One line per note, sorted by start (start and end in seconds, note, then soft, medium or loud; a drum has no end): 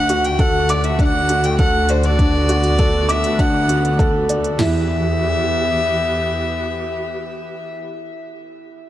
0.00 4.56 D2 loud
0.00 4.56 D3 medium
0.00 2.15 A3 medium
0.00 1.00 D4 medium
0.00 4.56 F#4 medium
0.00 0.27 F#5 loud
0.09 0.38 F#4 loud
0.09 closed hi-hat medium
0.24 0.41 G5 loud
0.24 closed hi-hat soft
0.39 0.68 A4 loud
0.39 0.71 F#5 loud
0.39 kick loud
0.39 closed hi-hat soft
0.69 0.86 D5 medium
0.69 0.98 D6 loud
0.69 closed hi-hat medium
0.84 1.01 E5 medium
0.84 closed hi-hat soft
0.99 1.28 D4 medium
0.99 1.46 F#5 loud
0.99 kick loud
0.99 closed hi-hat soft
1.29 1.58 F#4 medium
1.29 closed hi-hat medium
1.44 1.59 G5 loud
1.44 closed hi-hat soft
1.59 1.88 A4 loud
1.59 1.91 F#5 loud
1.59 kick loud
1.59 closed hi-hat soft
1.89 2.06 C5 medium
1.89 2.18 D5 medium
1.89 closed hi-hat medium
2.03 3.12 D5 loud
2.03 closed hi-hat soft
2.19 4.57 B3 medium
2.19 2.48 D4 medium
2.19 kick medium
2.19 closed hi-hat soft
2.49 2.78 F#4 loud
2.49 closed hi-hat medium
2.64 closed hi-hat soft
2.79 3.08 A4 loud
2.79 kick loud
2.79 closed hi-hat soft
3.09 3.41 E5 loud
3.09 3.37 D6 loud
3.09 closed hi-hat medium
3.24 closed hi-hat soft
3.39 3.67 D4 loud
3.39 3.99 F#5 loud
3.39 kick loud
3.39 closed hi-hat soft
3.69 3.98 F#4 medium
3.69 closed hi-hat medium
3.85 closed hi-hat soft
3.99 4.28 A4 loud
3.99 kick loud
3.99 closed hi-hat soft
4.29 4.58 D5 medium
4.29 closed hi-hat medium
4.44 closed hi-hat soft
4.59 6.35 E2 loud
4.59 7.75 E3 medium
4.59 7.75 B3 medium
4.59 4.87 E4 loud
4.59 7.75 G4 medium
4.59 7.75 E5 loud
4.59 snare loud
4.59 floor tom loud
4.59 crash medium